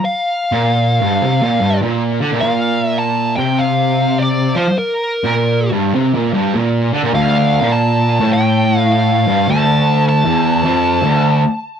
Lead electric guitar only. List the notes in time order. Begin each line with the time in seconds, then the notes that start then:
0.05 F5
2.40 F5
2.84 E5
2.99 A5
3.36 G5
3.59 F5
4.19 D5
4.57 C5
4.78 A#4
7.15 F5
7.72 A5
8.33 G5
8.79 F5
8.92 F5
9.50 A5
10.09 A5